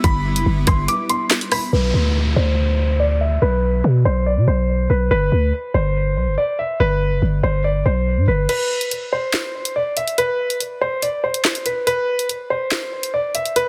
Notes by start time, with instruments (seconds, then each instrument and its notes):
Already playing: ambient pad G3 B3 D4 E4
0.04 808-style bass G1, grand piano B5, kick, closed hi-hat
0.36 808-style bass F#1, closed hi-hat
0.46 808-style bass G1
0.67 808-style bass G1, grand piano C6, kick, cross-stick, closed hi-hat
0.88 grand piano D6, closed hi-hat
1.09 grand piano C6, closed hi-hat
1.31 snare, clap, closed hi-hat
1.41 closed hi-hat
1.52 grand piano B5, cross-stick, open hi-hat
1.73 808-style bass B1, grand piano B4, downlifter
1.94 808-style bass D2
2.36 808-style bass D2, grand piano C5
3.00 grand piano D5
3.21 grand piano E5
3.42 808-style bass B1, grand piano B4
3.84 808-style bass B2
4.05 808-style bass B1, grand piano C5
4.26 grand piano D5
4.37 808-style bass B2
4.48 808-style bass B1, grand piano C5
4.90 808-style bass B1, grand piano B4
5.11 808-style bass G1, grand piano B4
5.32 808-style bass D2
5.74 808-style bass G1, grand piano C5
6.17 808-style bass B1
6.27 808-style bass G1
6.38 grand piano D5
6.59 grand piano E5
6.80 808-style bass G1, grand piano B4
7.12 808-style bass F#1
7.22 808-style bass G1
7.43 808-style bass G1, grand piano C5
7.64 grand piano D5
7.86 808-style bass B1, grand piano C5
8.17 808-style bass G2
8.28 808-style bass G1, grand piano B4
8.49 grand piano B4, closed hi-hat, crash
8.81 closed hi-hat
8.91 closed hi-hat
9.13 grand piano C5
9.33 snare, clap, closed hi-hat
9.65 closed hi-hat
9.76 grand piano D5
9.97 grand piano E5, closed hi-hat
10.08 closed hi-hat
10.18 grand piano B4, closed hi-hat
10.50 closed hi-hat
10.60 closed hi-hat
10.81 grand piano C5
11.02 grand piano D5, closed hi-hat
11.24 grand piano C5
11.34 closed hi-hat
11.45 snare, clap
11.55 closed hi-hat
11.66 grand piano B4, closed hi-hat
11.87 grand piano B4, closed hi-hat
12.19 closed hi-hat
12.29 closed hi-hat
12.50 grand piano C5
12.71 snare, clap, closed hi-hat
13.03 closed hi-hat
13.14 grand piano D5
13.35 grand piano E5, closed hi-hat
13.46 closed hi-hat
13.56 grand piano B4, closed hi-hat